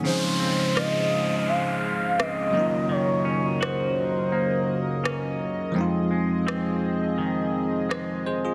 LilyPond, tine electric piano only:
\new Staff \with { instrumentName = "Tine electric piano" } { \time 4/4 \key des \major \tempo 4 = 84 << { r1 | r1 | r2. <c'' ees''>8 <aes' c''>16 <f' aes'>16 | } \\ { <ees f c' des' ees' aes'>2.~ <ees f c' des' ees' aes'>8 <ges bes des' ees' f'>8~ | <ges bes des' ees' f'>2.~ <ges bes des' ees' f'>8 r8 | <f aes c' ees' f'>1 | } >> }